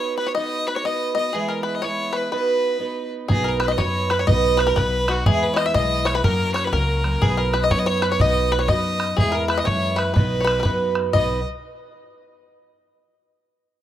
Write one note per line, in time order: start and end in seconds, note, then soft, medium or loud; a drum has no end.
0.00 0.36 B3 medium
0.00 0.36 D#4 medium
0.00 0.36 F#4 medium
0.00 0.37 B4 medium
0.00 0.17 C#5 medium
0.00 0.18 C#5 medium
0.18 0.26 B4 medium
0.18 0.29 B4 medium
0.27 0.34 C#5 medium
0.27 0.36 C#5 medium
0.35 0.84 B3 medium
0.35 0.84 D#4 medium
0.35 0.85 F#4 medium
0.35 0.86 B4 medium
0.35 0.64 D#5 medium
0.35 0.69 D#5 loud
0.67 0.77 B4 medium
0.67 0.76 B4 medium
0.75 0.87 C#5 medium
0.75 0.85 C#5 medium
0.84 1.14 B3 medium
0.84 1.15 D#4 medium
0.84 1.16 F#4 medium
0.84 1.17 B4 medium
0.84 1.14 D#5 medium
0.84 1.16 D#5 loud
1.15 1.33 B3 medium
1.15 1.34 D#4 medium
1.15 1.34 F#4 medium
1.15 1.35 B4 medium
1.15 1.34 D#5 medium
1.15 1.36 D#5 medium
1.33 1.81 E3 medium
1.33 1.82 G#3 medium
1.33 1.83 B3 medium
1.33 1.83 E4 medium
1.33 1.49 G#4 medium
1.33 1.51 G#4 medium
1.48 1.63 A#4 medium
1.48 1.65 A#4 medium
1.63 1.83 B4 medium
1.63 1.76 B4 medium
1.75 1.86 D#5 medium
1.82 2.31 E3 medium
1.82 2.32 G#3 medium
1.82 2.32 B3 medium
1.82 2.33 E4 medium
1.82 2.11 C#5 medium
1.82 2.18 C#5 medium
2.13 2.31 B4 medium
2.13 2.33 B4 medium
2.32 2.79 B3 medium
2.32 2.80 D#4 medium
2.32 2.81 F#4 medium
2.32 3.08 B4 medium
2.32 2.82 B4 medium
2.32 3.09 B4 medium
2.79 3.30 B3 medium
2.79 3.30 D#4 medium
2.79 3.30 F#4 medium
2.79 3.31 B4 medium
3.28 3.75 B1 medium
3.28 3.78 B3 medium
3.28 3.78 D#4 medium
3.28 3.79 F#4 medium
3.28 3.33 G#4 medium
3.28 3.50 G#4 loud
3.28 3.80 B4 medium
3.28 bodhran medium
3.44 3.61 A#4 medium
3.48 3.61 A#4 medium
3.60 3.68 B4 medium
3.60 3.73 B4 medium
3.60 bodhran medium
3.68 3.77 D#5 medium
3.68 3.81 D#5 medium
3.78 4.24 F#2 medium
3.78 4.26 B3 medium
3.78 4.26 D#4 medium
3.78 4.27 F#4 medium
3.78 4.28 B4 medium
3.78 4.10 C#5 medium
3.78 4.13 C#5 loud
3.78 bodhran medium
4.10 4.18 B4 medium
4.10 4.21 B4 medium
4.10 bodhran medium
4.19 4.27 C#5 medium
4.19 4.29 C#5 medium
4.27 4.72 B1 medium
4.27 4.76 B3 medium
4.27 4.77 D#4 medium
4.27 4.77 F#4 medium
4.27 4.77 B4 medium
4.27 4.59 D#5 medium
4.27 4.62 D#5 loud
4.27 bodhran medium
4.57 4.66 B4 medium
4.57 4.71 B4 medium
4.57 bodhran medium
4.67 4.76 A#4 medium
4.67 4.80 A#4 loud
4.76 5.22 B1 medium
4.76 5.06 B3 medium
4.76 5.07 D#4 medium
4.76 5.08 F#4 medium
4.76 5.05 B4 medium
4.76 5.12 B4 loud
4.76 5.09 B4 medium
4.76 bodhran medium
5.07 5.26 B3 medium
5.07 5.26 D#4 medium
5.07 5.25 F#4 medium
5.07 5.26 F#4 medium
5.07 5.27 F#4 medium
5.07 5.27 B4 medium
5.07 bodhran medium
5.26 5.71 E2 medium
5.26 5.74 E3 medium
5.26 5.75 G#3 medium
5.26 5.76 B3 medium
5.26 5.76 E4 medium
5.26 5.54 G#4 medium
5.26 5.44 G#4 loud
5.26 bodhran medium
5.43 5.59 B4 loud
5.54 5.57 C#5 medium
5.54 5.65 D#5 medium
5.54 5.67 D#5 medium
5.54 bodhran medium
5.66 5.75 E5 loud
5.66 5.74 E5 medium
5.74 6.20 B1 medium
5.74 6.23 E3 medium
5.74 6.24 G#3 medium
5.74 6.25 B3 medium
5.74 6.25 E4 medium
5.74 6.05 D#5 loud
5.74 6.08 D#5 loud
5.74 bodhran medium
6.05 6.15 C#5 medium
6.05 6.16 C#5 medium
6.05 bodhran medium
6.14 6.26 B4 medium
6.14 6.24 B4 medium
6.24 6.69 F#2 medium
6.24 6.73 F#3 medium
6.24 6.72 A#3 medium
6.24 6.73 C#4 medium
6.24 6.75 F#4 medium
6.24 6.53 A#4 medium
6.24 6.54 A#4 loud
6.24 bodhran medium
6.54 6.68 C#5 medium
6.54 6.66 C#5 medium
6.54 bodhran medium
6.64 6.75 B4 medium
6.64 6.72 B4 medium
6.73 7.18 C#2 medium
6.73 7.02 F#3 medium
6.73 7.03 A#3 medium
6.73 7.04 C#4 medium
6.73 7.05 F#4 medium
6.73 7.23 A#4 medium
6.73 7.24 A#4 loud
6.73 bodhran medium
7.04 7.22 F#3 medium
7.04 7.22 A#3 medium
7.04 7.23 C#4 medium
7.04 7.23 F#4 medium
7.04 bodhran medium
7.22 7.67 B1 loud
7.22 7.70 B3 medium
7.22 7.70 D#4 medium
7.22 7.72 F#4 medium
7.22 7.38 G#4 medium
7.22 7.39 G#4 loud
7.22 7.73 B4 medium
7.22 bodhran medium
7.37 7.53 A#4 medium
7.37 7.54 A#4 medium
7.53 7.61 B4 medium
7.53 7.63 B4 medium
7.53 bodhran medium
7.61 7.72 D#5 medium
7.61 7.71 D#5 medium
7.70 8.16 F#2 medium
7.70 8.19 B3 medium
7.70 8.19 D#4 medium
7.70 8.20 F#4 medium
7.70 8.21 B4 medium
7.70 7.80 C#5 loud
7.70 7.85 C#5 medium
7.70 bodhran medium
7.79 7.89 D#5 medium
7.86 8.02 C#5 medium
7.86 8.05 C#5 loud
8.02 8.11 B4 medium
8.02 8.10 B4 medium
8.02 bodhran medium
8.11 8.22 C#5 medium
8.11 8.21 C#5 medium
8.19 8.65 B1 loud
8.19 8.69 B3 medium
8.19 8.68 D#4 medium
8.19 8.69 F#4 medium
8.19 8.70 B4 medium
8.19 8.53 D#5 loud
8.19 8.52 D#5 medium
8.19 bodhran medium
8.52 8.62 B4 medium
8.52 8.61 B4 medium
8.59 8.68 C#5 medium
8.59 8.71 C#5 medium
8.68 9.13 F#2 medium
8.68 9.18 B3 medium
8.68 9.18 D#4 medium
8.68 9.19 F#4 medium
8.68 9.20 B4 medium
8.68 9.19 D#5 medium
8.68 9.18 D#5 loud
8.68 bodhran medium
9.00 bodhran medium
9.17 9.63 E2 loud
9.17 9.66 E3 medium
9.17 9.67 G#3 medium
9.17 9.68 B3 medium
9.17 9.68 E4 medium
9.17 9.33 G#4 medium
9.17 9.36 G#4 medium
9.17 bodhran medium
9.32 9.48 A#4 medium
9.32 9.49 A#4 medium
9.48 9.57 B4 medium
9.48 9.60 B4 medium
9.48 bodhran medium
9.58 9.65 D#5 medium
9.58 9.69 D#5 loud
9.65 10.12 F#2 medium
9.65 10.15 E3 medium
9.65 10.16 G#3 medium
9.65 10.15 B3 medium
9.65 10.17 E4 medium
9.65 9.98 C#5 medium
9.65 10.00 C#5 loud
9.65 bodhran medium
9.96 10.12 B4 medium
9.96 10.15 B4 medium
9.96 bodhran medium
10.14 10.61 B1 medium
10.14 10.64 B3 medium
10.14 10.65 D#4 medium
10.14 10.66 F#4 medium
10.14 10.39 B4 medium
10.14 10.92 B4 medium
10.14 10.67 B4 medium
10.14 bodhran medium
10.40 10.46 C#5 soft
10.44 10.59 B4 medium
10.44 bodhran medium
10.60 10.62 A#4 soft
10.60 10.93 B4 medium
10.64 11.10 F#2 medium
10.64 11.14 B3 medium
10.64 11.15 D#4 medium
10.64 11.15 F#4 medium
10.64 11.16 B4 medium
10.64 bodhran medium
10.95 bodhran medium
11.13 11.43 B1 medium
11.13 11.39 B3 medium
11.13 11.39 D#4 medium
11.13 11.40 F#4 medium
11.13 11.40 B4 medium
11.13 11.43 D#5 medium
11.13 11.44 D#5 medium
11.13 bodhran medium